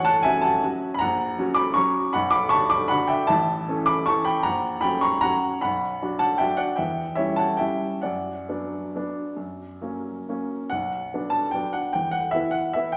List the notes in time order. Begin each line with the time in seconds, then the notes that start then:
Already playing: A1 C#5 F#5
0.05 F#5 A5
0.23 F#3 C#4 F#4 E5 G#5
0.41 F#5 A5
0.63 F#3 C#4 F#4
0.94 B5
0.99 A#1 F#5 A#5
1.38 F#3 C#4 F#4
1.54 B5 D6
1.74 F#3 C#4 F#4 A#5 C#6
2.13 B1 F#5 B5
2.31 B5 D6
2.49 D3 D4 F#4 A5 C#6
2.70 B5 D6
2.88 D3 D4 F#4 F#5 B5
3.07 E5 G5
3.27 A1 E5 A5
3.69 E3 C#4 A4
3.86 B5 D6
4.06 E3 C#4 A4 A5 C#6
4.25 G5 B5
4.43 A#1 F#5 A#5
4.81 F#3 C#4 F#4 G5 B5
5.01 A#5 C#6
5.21 F#3 C#4 F#4 F#5 A#5
5.61 B1 F#5 B5
6.02 F#3 D4 F#4
6.19 F#5 A5
6.38 F#3 D4 F#4 E5 G5
6.57 D5 F#5
6.76 E2 E5 G5
7.15 G3 C#4 E4 C#5 E5
7.36 F#5 A5
7.57 G3 C#4 E4 E5 G5
8.02 F#2 D5 F#5
8.49 F#3 B3 D4
8.95 F#3 B3 D4
9.37 F#2
9.81 F#3 A#3 C#4
10.29 F#3 A#3 C#4
10.70 B1 F#5
11.14 F#3 B3 D4
11.30 A5
11.51 F#3 B3 D4 G5
11.73 F#5
11.93 E2 G5
12.11 F#5
12.31 E3 B3 E4 E5
12.51 F#5
12.73 E3 B3 E4 E5
12.92 G5